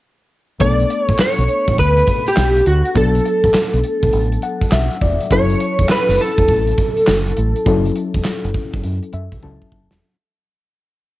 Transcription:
0.60 B1 A3 B3 D4 A4 D5, kick, closed hi-hat
0.80 closed hi-hat
0.90 closed hi-hat
1.04 C#5
1.09 A1, kick, closed hi-hat
1.18 C#5, muted fingered electric bass stroke, snare, clap
1.38 B1, closed hi-hat
1.48 closed hi-hat
1.68 A1, kick, closed hi-hat
1.78 D2 B4, kick, closed hi-hat
1.97 closed hi-hat
2.07 kick, closed hi-hat
2.26 G4, closed hi-hat
2.36 B1, snare, clap
2.56 closed hi-hat
2.66 D2 F#4, closed hi-hat
2.85 closed hi-hat
2.95 B1 F#3 B3 D4 A4, kick, closed hi-hat
3.15 closed hi-hat
3.25 closed hi-hat
3.44 A1, kick, closed hi-hat
3.54 muted fingered electric bass stroke, snare, clap
3.74 B1, closed hi-hat
3.84 closed hi-hat
4.03 B1, kick, closed hi-hat
4.13 A1, closed hi-hat
4.32 closed hi-hat
4.42 F#5, closed hi-hat
4.61 kick, closed hi-hat
4.71 B1 E5, snare, clap
4.91 closed hi-hat
5.01 E1 D5, kick, closed hi-hat
5.20 closed hi-hat
5.30 F#1 F#3 C#4 E4 A4 C#5, kick, closed hi-hat
5.50 closed hi-hat
5.60 closed hi-hat
5.79 E1, kick, closed hi-hat
5.89 B4, snare, clap
6.09 F#1, snare, closed hi-hat
6.19 A4, closed hi-hat
6.38 E1, kick, closed hi-hat
6.48 A1, kick, closed hi-hat
6.67 closed hi-hat
6.78 kick, closed hi-hat
6.97 closed hi-hat
7.07 F#1, snare, clap
7.27 closed hi-hat
7.37 A1, closed hi-hat
7.56 closed hi-hat
7.66 F#1 F#3 C#4 E4 A4, kick, closed hi-hat
7.85 closed hi-hat
7.96 closed hi-hat
8.14 E1, kick, closed hi-hat
8.24 muted fingered electric bass stroke, snare, clap
8.44 F#1, closed hi-hat
8.54 kick, closed hi-hat
8.73 F#1, kick, closed hi-hat
8.84 F#2, closed hi-hat
9.03 closed hi-hat
9.13 F#2 E5, closed hi-hat
9.32 B1, kick, closed hi-hat
9.42 C#2 F#3 C#4 E4 A4 A5, kick
9.62 kick
9.72 F#1, kick
9.91 E1, snare

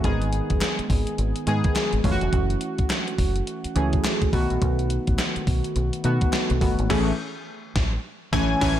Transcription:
0.04 G#1 D#3 G#3 B3 G#4, kick, closed hi-hat
0.22 closed hi-hat
0.33 closed hi-hat
0.50 F#1, kick, closed hi-hat
0.61 snare, clap, closed hi-hat
0.79 muted fingered electric bass stroke, closed hi-hat
0.90 G#1, kick, open hi-hat
1.07 closed hi-hat
1.18 G#1, closed hi-hat
1.36 closed hi-hat
1.47 G#2 D#3 G#3 B3 G#4, closed hi-hat
1.64 kick, closed hi-hat
1.75 snare, clap, closed hi-hat
1.93 G#1, closed hi-hat
2.04 F#1 E3 A3 C#4 F4, kick, open hi-hat
2.12 F#4
2.21 F1, closed hi-hat
2.33 F#1, kick, closed hi-hat
2.50 closed hi-hat
2.61 closed hi-hat
2.78 muted fingered electric bass stroke, kick, closed hi-hat
2.90 snare, clap, closed hi-hat
3.08 closed hi-hat
3.18 F#1, kick, open hi-hat
3.36 closed hi-hat
3.47 closed hi-hat
3.64 muted fingered electric bass stroke, closed hi-hat
3.75 C#2 E3 A3 C#4 G#4, closed hi-hat
3.93 kick, closed hi-hat
4.04 snare, clap, closed hi-hat
4.22 kick, closed hi-hat
4.33 B1 D#3 A3 B3 F#4, kick, open hi-hat
4.50 A#1, closed hi-hat
4.62 B1, kick, closed hi-hat
4.79 closed hi-hat
4.90 closed hi-hat
5.07 A1, kick, closed hi-hat
5.18 snare, clap, closed hi-hat
5.36 muted fingered electric bass stroke, closed hi-hat
5.47 B1, kick, open hi-hat
5.64 closed hi-hat
5.76 B1, closed hi-hat
5.93 closed hi-hat
6.04 B2 D#3 A3 B3 F#4, closed hi-hat
6.21 kick, closed hi-hat
6.33 snare, clap, closed hi-hat
6.50 B1, closed hi-hat
6.61 G1 D#3 A3 B3 F#4, kick, open hi-hat
6.79 G#1, closed hi-hat
6.90 E3 A3 C#4 G#4, kick, snare, crash
7.76 A1, kick, snare
8.32 A1 E3 A3 C#4 G#5, kick, snare
8.61 A1 E3 A3 C#4 G#5, kick, snare, crash

